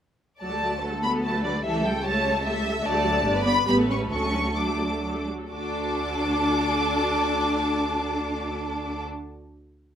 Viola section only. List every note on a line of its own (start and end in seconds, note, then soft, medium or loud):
0.42 0.51 F#3 soft
0.42 0.52 F#4 soft
0.52 0.62 A3 soft
0.52 0.62 A4 soft
0.62 0.73 F#3 soft
0.62 0.72 F#4 soft
0.72 0.83 A3 soft
0.72 0.83 A4 soft
0.82 0.92 F#3 soft
0.82 0.92 F#4 soft
0.93 1.03 A3 soft
0.93 1.03 A4 soft
1.03 1.14 F#3 soft
1.03 1.13 F#4 soft
1.14 1.24 A3 soft
1.14 1.24 A4 soft
1.24 1.33 F#3 soft
1.24 1.33 F#4 soft
1.34 1.44 A3 soft
1.34 1.44 A4 soft
1.44 1.54 F#3 soft
1.44 1.54 F#4 soft
1.53 1.64 A3 soft
1.53 1.64 A4 soft
1.63 1.73 G3 soft
1.63 1.73 G4 soft
1.74 1.84 A3 soft
1.74 1.84 A4 soft
1.82 1.93 G3 soft
1.82 1.93 G4 soft
1.93 2.03 A3 soft
1.93 2.04 A4 medium
2.03 2.13 G3 medium
2.03 2.13 G4 medium
2.13 2.24 A3 soft
2.13 2.23 A4 soft
2.23 2.34 G3 medium
2.23 2.33 G4 medium
2.33 2.43 A3 soft
2.33 2.43 A4 medium
2.42 2.52 G3 medium
2.42 2.52 G4 medium
2.52 2.63 A3 soft
2.52 2.63 A4 medium
2.62 2.73 G3 medium
2.62 2.73 G4 medium
2.73 2.83 A3 medium
2.73 2.83 A4 medium
2.83 2.92 F#3 medium
2.83 2.92 F#4 medium
2.93 3.04 A3 medium
2.93 3.04 A4 medium
3.03 3.14 F#3 medium
3.03 3.14 F#4 medium
3.13 3.24 A3 medium
3.13 3.24 A4 medium
3.23 3.33 D4 medium
3.23 3.33 G4 medium
3.33 3.45 B3 medium
3.33 3.45 B4 medium
3.44 3.55 D4 medium
3.44 3.55 G4 medium
3.55 3.66 B3 medium
3.55 3.66 B4 medium
3.66 3.77 G3 medium
3.66 3.77 G4 medium
3.78 3.88 A3 soft
3.78 3.89 A4 soft
3.89 4.00 G3 soft
3.89 4.00 G4 soft
4.01 4.11 A3 soft
4.01 4.11 A4 soft
4.10 4.21 F#3 soft
4.10 4.21 F#4 soft
4.23 4.34 A3 soft
4.23 4.34 A4 soft
4.34 4.45 F#3 soft
4.34 4.45 F#4 soft
4.46 4.57 A3 soft
4.46 4.56 A4 soft
4.57 4.67 F#3 soft
4.57 4.67 F#4 soft
4.69 4.80 A3 soft
4.69 4.80 A4 soft
4.79 4.91 F#3 soft
4.79 4.91 F#4 soft
4.91 5.03 A3 soft
4.91 5.03 A4 soft
5.03 5.14 F#3 soft
5.03 5.14 F#4 soft
5.14 5.27 A3 soft
5.14 5.27 A4 soft
5.27 5.39 F#3 soft
5.27 5.39 F#4 soft
5.39 5.51 A3 soft
5.39 5.51 A4 soft
5.52 9.01 D4 medium
5.52 9.02 F#4 medium